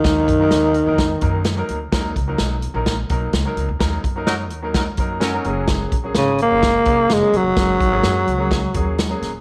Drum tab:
HH |xxxxxxxx|xxxxxxxx|xxxxxxxx|xxxxxxxx|
SD |o-o-o-o-|o-o-o-o-|o-o-o-o-|o-o-o-o-|
BD |oo--oo--|oo--oo--|oo--oo--|oo--oo--|

HH |xxxxxxxx|
SD |o-o-o-oo|
BD |oo--oo--|